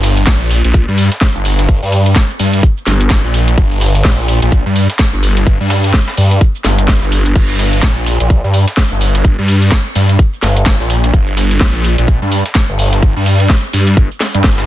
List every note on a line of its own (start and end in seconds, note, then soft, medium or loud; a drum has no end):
0.00 0.25 G1 loud
0.00 snare medium
0.00 open hi-hat loud
0.00 open hi-hat medium
0.00 shaker medium
0.17 closed hi-hat soft
0.17 shaker soft
0.27 0.62 A#1 medium
0.27 kick loud
0.27 snare loud
0.27 closed hi-hat medium
0.27 tambourine medium
0.27 shaker soft
0.41 shaker soft
0.51 open hi-hat loud
0.51 tambourine medium
0.51 shaker medium
0.64 0.86 A#1 loud
0.64 closed hi-hat medium
0.64 shaker soft
0.74 kick loud
0.74 closed hi-hat medium
0.74 tambourine medium
0.74 shaker soft
0.88 1.09 G2 loud
0.88 shaker soft
0.98 open hi-hat loud
0.98 tambourine medium
0.98 shaker medium
1.12 snare medium
1.12 closed hi-hat medium
1.12 shaker soft
1.21 kick loud
1.21 snare loud
1.21 open hi-hat medium
1.21 tambourine medium
1.21 shaker soft
1.35 1.80 G1 medium
1.35 shaker soft
1.45 open hi-hat loud
1.45 tambourine medium
1.45 shaker medium
1.59 snare soft
1.59 closed hi-hat medium
1.59 shaker soft
1.69 kick loud
1.69 closed hi-hat medium
1.69 tambourine medium
1.69 shaker soft
1.83 2.14 G2 loud
1.83 shaker soft
1.92 open hi-hat loud
1.92 tambourine medium
1.92 shaker medium
2.06 closed hi-hat medium
2.06 shaker soft
2.16 kick loud
2.16 snare loud
2.16 closed hi-hat medium
2.16 tambourine medium
2.16 shaker soft
2.30 shaker soft
2.40 2.62 G2 medium
2.40 open hi-hat loud
2.40 tambourine medium
2.40 shaker medium
2.53 closed hi-hat medium
2.53 shaker soft
2.63 kick loud
2.63 closed hi-hat medium
2.63 tambourine medium
2.63 shaker soft
2.77 shaker soft
2.87 3.22 G1 medium
2.87 snare medium
2.87 open hi-hat loud
2.87 tambourine medium
2.87 shaker medium
3.01 closed hi-hat soft
3.01 closed hi-hat medium
3.01 shaker soft
3.10 kick loud
3.10 snare loud
3.10 open hi-hat medium
3.10 tambourine medium
3.10 shaker soft
3.24 3.56 A#1 loud
3.24 snare soft
3.24 shaker soft
3.34 open hi-hat loud
3.34 tambourine medium
3.34 shaker medium
3.48 snare soft
3.48 closed hi-hat medium
3.48 shaker soft
3.58 4.03 G1 loud
3.58 kick loud
3.58 closed hi-hat medium
3.58 tambourine medium
3.58 shaker soft
3.71 closed hi-hat soft
3.71 shaker soft
3.81 snare medium
3.81 open hi-hat loud
3.81 open hi-hat medium
3.81 shaker medium
3.95 closed hi-hat medium
3.95 shaker soft
4.05 4.40 A#1 loud
4.05 kick loud
4.05 snare loud
4.05 closed hi-hat medium
4.05 tambourine medium
4.05 shaker soft
4.19 shaker soft
4.28 open hi-hat loud
4.28 tambourine medium
4.28 shaker medium
4.42 4.64 A#1 loud
4.42 closed hi-hat medium
4.42 shaker soft
4.52 kick loud
4.52 closed hi-hat medium
4.52 tambourine medium
4.52 shaker soft
4.66 4.87 G2 loud
4.66 shaker soft
4.76 open hi-hat loud
4.76 tambourine medium
4.76 shaker medium
4.90 snare medium
4.90 closed hi-hat medium
4.90 shaker soft
4.99 kick loud
4.99 snare loud
4.99 open hi-hat medium
4.99 tambourine medium
4.99 shaker soft
5.13 5.58 G1 loud
5.13 shaker soft
5.23 open hi-hat loud
5.23 tambourine medium
5.23 shaker medium
5.37 snare medium
5.37 closed hi-hat medium
5.37 shaker soft
5.47 kick loud
5.47 closed hi-hat medium
5.47 tambourine medium
5.47 shaker soft
5.60 5.92 G2 loud
5.60 shaker soft
5.70 snare loud
5.70 open hi-hat loud
5.70 tambourine medium
5.70 shaker medium
5.84 snare soft
5.84 closed hi-hat medium
5.84 shaker soft
5.94 kick loud
5.94 snare loud
5.94 closed hi-hat medium
5.94 tambourine medium
5.94 shaker soft
6.08 snare loud
6.08 tambourine medium
6.08 shaker soft
6.17 6.40 G2 loud
6.17 snare soft
6.17 open hi-hat loud
6.17 shaker medium
6.31 closed hi-hat medium
6.31 tambourine medium
6.31 shaker soft
6.41 kick loud
6.41 closed hi-hat medium
6.41 tambourine medium
6.41 shaker soft
6.55 shaker soft
6.64 7.00 G1 medium
6.64 snare medium
6.64 open hi-hat loud
6.64 tambourine medium
6.64 shaker medium
6.79 closed hi-hat medium
6.79 closed hi-hat soft
6.79 shaker soft
6.88 kick loud
6.88 snare loud
6.88 open hi-hat medium
6.88 tambourine medium
6.88 shaker soft
7.02 7.34 G1 loud
7.02 snare soft
7.02 shaker soft
7.12 open hi-hat loud
7.12 tambourine medium
7.12 shaker medium
7.26 snare soft
7.26 closed hi-hat medium
7.26 shaker soft
7.36 7.81 G1 loud
7.36 kick loud
7.36 closed hi-hat medium
7.36 tambourine medium
7.36 crash medium
7.36 shaker soft
7.50 closed hi-hat soft
7.50 shaker soft
7.59 snare medium
7.59 open hi-hat loud
7.59 open hi-hat medium
7.59 shaker medium
7.73 closed hi-hat medium
7.73 shaker soft
7.83 8.18 A#1 loud
7.83 kick loud
7.83 snare loud
7.83 closed hi-hat medium
7.83 tambourine medium
7.83 shaker soft
7.97 shaker soft
8.06 open hi-hat loud
8.06 tambourine medium
8.06 shaker medium
8.20 8.42 A#1 loud
8.20 closed hi-hat medium
8.20 shaker soft
8.30 kick loud
8.30 closed hi-hat medium
8.30 tambourine medium
8.30 shaker soft
8.44 8.65 G2 loud
8.44 shaker soft
8.54 open hi-hat loud
8.54 tambourine medium
8.54 shaker medium
8.68 snare medium
8.68 closed hi-hat medium
8.68 shaker soft
8.77 kick loud
8.77 snare loud
8.77 open hi-hat medium
8.77 tambourine medium
8.77 shaker soft
8.91 9.36 G1 loud
8.91 shaker soft
9.01 open hi-hat loud
9.01 tambourine medium
9.01 shaker medium
9.15 snare soft
9.15 closed hi-hat medium
9.15 shaker soft
9.25 kick loud
9.25 closed hi-hat medium
9.25 tambourine medium
9.25 shaker soft
9.38 9.70 G2 loud
9.38 shaker soft
9.48 open hi-hat loud
9.48 tambourine medium
9.48 shaker medium
9.62 closed hi-hat medium
9.62 shaker soft
9.72 kick loud
9.72 snare loud
9.72 closed hi-hat medium
9.72 tambourine medium
9.72 shaker soft
9.86 shaker soft
9.95 10.17 G2 loud
9.95 open hi-hat loud
9.95 tambourine medium
9.95 shaker medium
10.09 closed hi-hat medium
10.09 shaker soft
10.19 kick loud
10.19 closed hi-hat medium
10.19 tambourine medium
10.19 shaker soft
10.33 shaker soft
10.43 10.78 G1 medium
10.43 snare medium
10.43 open hi-hat loud
10.43 tambourine medium
10.43 shaker medium
10.57 closed hi-hat soft
10.57 closed hi-hat medium
10.57 shaker soft
10.66 kick loud
10.66 snare loud
10.66 open hi-hat medium
10.66 tambourine medium
10.66 shaker soft
10.80 11.12 A#1 loud
10.80 snare soft
10.80 shaker soft
10.90 open hi-hat loud
10.90 tambourine medium
10.90 shaker medium
11.04 snare soft
11.04 closed hi-hat medium
11.04 shaker soft
11.14 11.59 G1 loud
11.14 kick loud
11.14 closed hi-hat medium
11.14 tambourine medium
11.14 shaker soft
11.27 closed hi-hat soft
11.27 shaker soft
11.37 snare medium
11.37 open hi-hat medium
11.37 open hi-hat loud
11.37 shaker medium
11.51 closed hi-hat soft
11.51 shaker soft
11.61 11.96 A#1 loud
11.61 kick loud
11.61 snare loud
11.61 closed hi-hat medium
11.61 tambourine medium
11.61 shaker soft
11.75 shaker soft
11.84 open hi-hat loud
11.84 tambourine medium
11.84 shaker medium
11.98 12.20 A#1 loud
11.98 closed hi-hat medium
11.98 shaker soft
12.08 kick loud
12.08 closed hi-hat medium
12.08 tambourine medium
12.08 shaker soft
12.22 12.43 G2 loud
12.22 shaker soft
12.32 open hi-hat loud
12.32 tambourine medium
12.32 shaker medium
12.46 snare medium
12.46 closed hi-hat medium
12.46 shaker soft
12.55 kick loud
12.55 snare loud
12.55 open hi-hat medium
12.55 tambourine medium
12.55 shaker soft
12.69 13.14 G1 loud
12.69 shaker soft
12.79 open hi-hat loud
12.79 tambourine medium
12.79 shaker medium
12.93 snare medium
12.93 closed hi-hat medium
12.93 shaker soft
13.02 kick loud
13.02 closed hi-hat medium
13.02 tambourine medium
13.02 shaker soft
13.16 13.48 G2 loud
13.16 shaker soft
13.26 open hi-hat loud
13.26 tambourine medium
13.26 shaker medium
13.40 closed hi-hat soft
13.40 shaker soft
13.50 kick loud
13.50 snare loud
13.50 closed hi-hat medium
13.50 tambourine medium
13.50 shaker soft
13.64 shaker soft
13.73 13.95 G2 loud
13.73 open hi-hat loud
13.73 tambourine medium
13.73 shaker medium
13.87 closed hi-hat medium
13.87 shaker soft
13.97 14.09 G1 loud
13.97 kick loud
13.97 closed hi-hat medium
13.97 tambourine medium
13.97 shaker soft
14.11 shaker soft
14.20 snare medium
14.20 snare loud
14.20 open hi-hat loud
14.20 tambourine medium
14.20 shaker medium
14.34 14.43 G2 loud
14.34 closed hi-hat medium
14.34 shaker soft
14.44 14.66 G1 loud
14.44 kick loud
14.44 snare loud
14.44 open hi-hat medium
14.44 tambourine medium
14.44 shaker soft
14.58 snare loud
14.58 tambourine medium
14.58 shaker soft